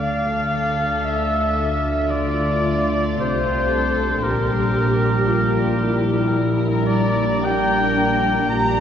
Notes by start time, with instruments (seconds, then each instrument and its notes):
Already playing: double bass section D2, harp D3, cello section D3, french horn section A3 D4, violin section A4 F5, oboe F5
0.25 harp A3
0.52 harp D4
0.79 harp A4
1.04 harp D4, oboe E5, violin section E5
1.33 harp A4
1.59 harp D4
1.85 harp A3
2.10 harp D3, violin section F4 D5, viola section F4, oboe D5
2.38 harp D4
2.65 harp A3
2.92 harp A4
3.19 double bass section C2, cello section C3, harp D4, violin section F4 C5, viola section G4, oboe C5
3.47 harp A4
3.70 harp D4, violin section A4, viola section A4
3.98 harp A3
4.21 double bass section A#1, cello section A#2, harp A#2, french horn section G3 D4, violin section G4 A#4, viola section G4, oboe A#4
4.49 harp G3
4.74 harp A#3
5.00 harp D4
5.23 viola section F4, violin section G4, harp G4
5.51 harp D4
5.77 harp A#3, viola section E4
6.03 harp G3
6.30 harp A#2, violin section A#4
6.59 harp A#3
6.86 harp G3, violin section D5, oboe D5
7.17 harp D4
7.44 viola section D4, harp G4, violin section A#4 G5, oboe G5
7.72 harp D4
7.97 harp A#3
8.23 harp G3
8.47 double bass section A#1, harp A#2, cello section A#2, french horn section G3 D4, violin section D4 A#5, viola section G4, oboe A#5
8.73 harp A#3